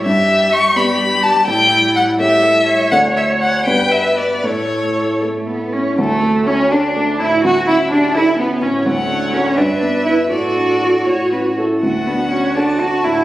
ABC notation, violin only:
X:1
M:6/8
L:1/8
Q:3/8=82
K:D
V:1 name="Violin"
e2 c' b2 a | g2 f e3 | f e f g e d | c3 z3 |
A,2 C D2 E | F E D E B, C | f3 e3 | d3 c2 z |
f3 a3 |]